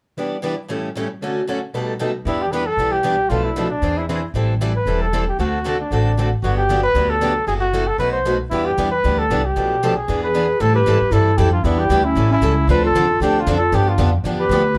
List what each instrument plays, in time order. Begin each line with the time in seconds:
0.17 steel-string acoustic guitar E3 G3 B3 D4 E4 G4 B4
0.43 steel-string acoustic guitar E3 G3 B3 D4 E4 G4 B4
0.69 steel-string acoustic guitar A2 C#3 E3 G3 A3 C#4 E4 G4 A4
0.96 steel-string acoustic guitar A2 C#3 E3 G3 A3 C#4 E4 G4 A4
1.21 steel-string acoustic guitar D3 F#3 A3 C#4 F#4 A4
1.48 steel-string acoustic guitar D3 F#3 A3 C#4 F#4 A4
1.73 steel-string acoustic guitar B2 G3 A3 D#4 A4 B4
2.01 steel-string acoustic guitar B2 G3 A3 D#4 A4 B4
2.25 upright bass E2, steel-string acoustic guitar E3 G3 B3 D4 E4 G4 B4, flugelhorn E4
2.42 flugelhorn G4
2.52 steel-string acoustic guitar E3 G3 B3 D4 E4 G4 B4, flugelhorn B4
2.66 flugelhorn A4
2.77 upright bass B1, steel-string acoustic guitar E3 G3 B3 D4 E4 G4 B4
2.92 flugelhorn G4
3.04 steel-string acoustic guitar E3 G3 B3 D4 E4 G4 B4
3.29 upright bass B1, steel-string acoustic guitar B2 F3 A3 D4 A4 B4, flugelhorn F4
3.44 flugelhorn E4
3.56 steel-string acoustic guitar B2 F3 A3 D4 A4 B4
3.70 flugelhorn D4
3.82 upright bass E2, steel-string acoustic guitar E3 C4 D4 G#4 C5
3.97 flugelhorn E4
4.09 steel-string acoustic guitar E3 C4 D4 G#4 C5, flugelhorn E4
4.34 upright bass A1, steel-string acoustic guitar E3 G3 C4 E4 A4
4.61 steel-string acoustic guitar E3 G3 C4 E4 A4
4.76 flugelhorn B4
4.86 upright bass E1, steel-string acoustic guitar E3 G3 C4 E4 A4
5.02 flugelhorn A4
5.13 steel-string acoustic guitar E3 G3 C4 E4 A4
5.29 flugelhorn G4
5.39 upright bass D2, steel-string acoustic guitar D3 A3 C4 F#4 A4, flugelhorn F#4
5.65 steel-string acoustic guitar D3 A3 C4 F#4 A4
5.81 flugelhorn D4
5.91 upright bass A1, steel-string acoustic guitar D3 A3 C4 F#4 A4
6.17 steel-string acoustic guitar D3 A3 C4 F#4 A4
6.42 upright bass G1, steel-string acoustic guitar D3 F#3 B3 D4 G4, flugelhorn F#4
6.57 flugelhorn G4
6.69 steel-string acoustic guitar D3 F#3 B3 D4 G4
6.84 flugelhorn B4
6.94 upright bass D2, steel-string acoustic guitar D3 F#3 B3 D4 G4
7.10 flugelhorn A4
7.21 steel-string acoustic guitar D3 F#3 B3 D4 G4
7.47 upright bass F#1, steel-string acoustic guitar C3 E3 F#3 A3 C4 E4 F#4 A4, flugelhorn G#4
7.61 flugelhorn F#4
7.73 steel-string acoustic guitar C3 E3 F#3 A3 C4 E4 F#4 A4
7.88 flugelhorn A4
7.98 upright bass B1, steel-string acoustic guitar B2 F#3 A3 D#4 F#4 B4, flugelhorn B4
8.12 flugelhorn C5
8.25 steel-string acoustic guitar B2 F#3 A3 D#4 F#4 B4
8.50 upright bass E2, steel-string acoustic guitar E3 G3 B3 D4 E4 G4 B4, flugelhorn E4
8.66 flugelhorn G4
8.78 upright bass E2, steel-string acoustic guitar E3 G3 B3 D4 E4 G4 B4
8.91 flugelhorn B4
9.04 upright bass D2, steel-string acoustic guitar E3 G3 B3 D4 E4 G4 B4
9.19 flugelhorn A4
9.30 upright bass C2, steel-string acoustic guitar E3 G3 B3 D4 E4 G4 B4
9.45 flugelhorn G4
9.56 upright bass B1, steel-string acoustic guitar B2 F3 A3 D4 A4 B4
9.83 steel-string acoustic guitar B2 F3 A3 D4 A4 B4
9.96 flugelhorn G#4
10.08 upright bass E2, steel-string acoustic guitar E3 B3 D4 G#4 B4
10.23 clarinet G#4, flugelhorn B4
10.35 steel-string acoustic guitar E3 B3 D4 G#4 B4
10.60 upright bass A2, steel-string acoustic guitar E3 G3 C4 E4 A4, clarinet E4, flugelhorn A4
10.74 clarinet G4, flugelhorn B4
10.86 upright bass G#2, steel-string acoustic guitar E3 G3 C4 E4 A4
11.01 muted upright bass stroke
11.11 upright bass G2, steel-string acoustic guitar E3 G3 C4 E4 A4, clarinet E4, flugelhorn A4
11.36 upright bass F2, steel-string acoustic guitar E3 G3 C4 E4 A4, clarinet E4, flugelhorn G4
11.52 clarinet D4, flugelhorn F4
11.63 upright bass E2, steel-string acoustic guitar E3 G3 B3 D4 E4 G4 B4, clarinet B3, flugelhorn E4
11.78 clarinet E4, flugelhorn G4
11.89 upright bass D2, steel-string acoustic guitar E3 G3 B3 D4 E4 G4 B4
12.04 clarinet C#4, flugelhorn E4
12.15 upright bass A1, steel-string acoustic guitar E3 G3 C#4 E4 A4
12.29 clarinet C#4, flugelhorn E4
12.41 upright bass C#2, steel-string acoustic guitar E3 G3 C#4 E4 A4
12.68 upright bass D2, steel-string acoustic guitar D3 F3 C4 D4 A4, clarinet F4, flugelhorn B4
12.84 clarinet F4, flugelhorn A4
12.95 upright bass E2, steel-string acoustic guitar D3 F3 C4 D4 A4
13.20 upright bass D2, steel-string acoustic guitar D3 F3 C4 D4 A4, clarinet D4, flugelhorn G4
13.40 clarinet D4, flugelhorn F4
13.46 upright bass F2, steel-string acoustic guitar D3 F3 C4 D4 A4
13.58 clarinet F4, flugelhorn A4
13.72 upright bass G2, steel-string acoustic guitar D3 F3 B3 D4 G4, clarinet D4, flugelhorn G4
13.89 clarinet D4, flugelhorn F4
13.98 upright bass F2, steel-string acoustic guitar D3 F3 B3 D4 G4
14.23 upright bass E2, steel-string acoustic guitar D3 F3 B3 D4 G4
14.39 clarinet G4, flugelhorn B4
14.49 upright bass D2, steel-string acoustic guitar D3 F3 B3 D4 G4
14.75 upright bass C2